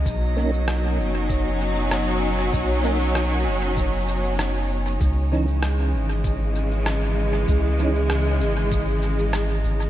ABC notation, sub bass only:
X:1
M:4/4
L:1/8
Q:"Swing 16ths" 1/4=97
K:C#m
V:1 name="Sub bass" clef=bass
B,,,3 F,,,4- F,,, | B,,,3 F,,,4- F,,, | C,,3 G,,,4- G,,, | C,,3 G,,,4 G,,, |]